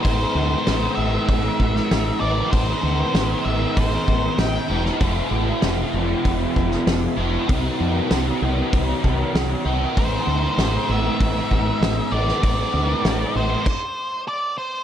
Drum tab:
CC |----------------|----------------|----------------|----------------|
HH |o---o---o---o---|o---o---o---o---|o---o---o---o---|o---o---o---o---|
SD |----o------oo---|----o-------o--o|----o------oo---|----o-------o---|
BD |o-------o-o-----|o-------o-o-----|o-------o-o-----|o-------o-o-----|

CC |----------------|--------x-------|
HH |o---o---o---o---|o---o-----------|
SD |----o-------o--o|----o-----------|
BD |o-------o-o-----|o-------o-------|